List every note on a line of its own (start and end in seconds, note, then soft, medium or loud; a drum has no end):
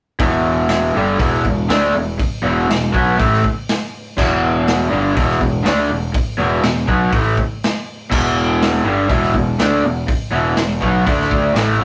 0.19 0.91 E1 loud
0.19 0.94 E2 medium
0.19 0.94 B2 medium
0.19 0.95 E3 loud
0.19 kick loud
0.19 open hi-hat medium
0.68 snare loud
0.68 open hi-hat medium
0.95 1.19 G1 medium
0.95 1.17 G2 medium
0.95 1.19 D3 loud
0.95 1.20 G3 loud
1.18 1.43 E1 loud
1.18 1.43 E2 loud
1.18 1.43 B2 loud
1.18 1.44 E3 loud
1.18 kick loud
1.18 open hi-hat medium
1.44 1.69 E1 medium
1.44 1.64 E2 medium
1.44 1.64 B2 medium
1.44 kick medium
1.68 1.92 D2 loud
1.68 1.93 D3 medium
1.68 1.94 A3 loud
1.68 1.94 D4 loud
1.68 snare loud
1.68 open hi-hat medium
1.93 2.18 E1 medium
1.93 2.14 E2 medium
1.93 2.14 B2 medium
2.18 muted overdriven electric guitar stroke medium
2.18 muted picked electric bass stroke soft
2.18 kick loud
2.18 open hi-hat medium
2.42 2.67 E1 medium
2.42 2.67 E2 medium
2.42 2.68 B2 loud
2.42 2.68 E3 loud
2.68 2.93 E1 medium
2.68 2.88 E2 medium
2.68 2.88 B2 medium
2.68 snare loud
2.68 open hi-hat medium
2.92 3.17 B1 medium
2.92 3.17 B2 medium
2.92 3.17 F#3 loud
2.92 3.18 B3 loud
2.92 kick medium
3.17 3.42 A1 loud
3.17 3.42 A2 medium
3.17 3.42 E3 loud
3.17 3.43 A3 loud
3.17 kick loud
3.17 open hi-hat medium
3.33 snare soft
3.44 kick medium
3.69 snare loud
3.69 open hi-hat medium
4.17 4.87 E1 loud
4.17 4.89 E2 loud
4.17 4.90 B2 medium
4.17 4.92 E3 medium
4.17 kick loud
4.17 crash medium
4.67 snare loud
4.67 open hi-hat medium
4.89 5.15 G1 loud
4.89 5.14 G2 loud
4.89 5.15 D3 medium
4.89 5.15 G3 loud
5.14 5.39 E1 loud
5.14 5.39 E2 loud
5.14 5.39 B2 loud
5.14 5.40 E3 loud
5.14 kick loud
5.18 open hi-hat medium
5.30 snare soft
5.40 5.64 E1 medium
5.40 5.60 E2 medium
5.40 5.60 B2 medium
5.40 kick medium
5.63 5.88 D2 loud
5.63 5.88 D3 loud
5.63 5.88 A3 loud
5.63 5.89 D4 loud
5.63 snare loud
5.63 open hi-hat medium
5.88 6.13 E1 medium
5.88 6.08 E2 medium
5.88 6.08 B2 medium
6.14 muted overdriven electric guitar stroke medium
6.14 muted picked electric bass stroke soft
6.14 kick loud
6.14 open hi-hat medium
6.37 6.62 E1 loud
6.37 6.61 E2 medium
6.37 6.62 B2 loud
6.37 6.63 E3 loud
6.63 6.86 E1 medium
6.63 6.83 E2 medium
6.63 6.83 B2 medium
6.63 snare loud
6.63 open hi-hat medium
6.76 snare soft
6.87 7.11 B1 medium
6.87 7.11 B2 loud
6.87 7.12 F#3 loud
6.87 7.12 B3 loud
6.87 kick medium
7.12 7.35 A1 loud
7.12 7.36 A2 loud
7.12 7.36 E3 loud
7.12 7.37 A3 loud
7.12 kick loud
7.12 open hi-hat medium
7.37 kick medium
7.64 snare loud
7.64 open hi-hat medium
8.10 8.81 E1 loud
8.10 8.83 E2 medium
8.10 8.84 B2 medium
8.10 8.84 E3 loud
8.10 kick loud
8.10 crash loud
8.62 snare loud
8.62 open hi-hat medium
8.74 snare soft
8.84 9.07 G1 medium
8.84 9.08 G2 loud
8.84 9.09 D3 loud
8.84 9.09 G3 loud
9.09 9.32 E1 medium
9.09 9.33 E2 loud
9.09 9.33 B2 loud
9.09 9.34 E3 loud
9.09 kick loud
9.09 open hi-hat medium
9.23 snare soft
9.34 9.57 E1 medium
9.34 9.54 E2 medium
9.34 9.54 B2 medium
9.34 kick medium
9.59 9.83 D2 medium
9.59 9.82 D3 loud
9.59 9.83 A3 loud
9.59 9.83 D4 loud
9.59 snare loud
9.59 open hi-hat medium
9.84 10.06 E1 medium
9.84 10.03 E2 medium
9.84 10.03 B2 medium
10.08 muted picked electric bass stroke soft
10.08 muted overdriven electric guitar stroke medium
10.08 kick loud
10.08 open hi-hat medium
10.31 10.55 E1 medium
10.31 10.55 E2 loud
10.31 10.56 B2 loud
10.31 10.56 E3 loud
10.56 10.80 E1 medium
10.56 10.76 E2 medium
10.56 10.76 B2 medium
10.56 snare loud
10.56 open hi-hat medium
10.80 11.05 B1 loud
10.80 11.05 B2 loud
10.80 11.05 F#3 loud
10.80 11.06 B3 loud
10.80 kick medium
11.05 11.52 D2 loud
11.05 11.53 D3 medium
11.05 11.55 A3 loud
11.05 11.55 D4 loud
11.05 kick loud
11.05 open hi-hat medium
11.20 snare soft
11.31 kick medium
11.54 11.78 A1 loud
11.54 11.78 A2 loud
11.54 11.79 E3 loud
11.54 11.79 A3 loud
11.54 snare loud
11.54 open hi-hat medium
11.80 11.84 E1 loud
11.80 11.84 E2 loud
11.80 11.84 B2 loud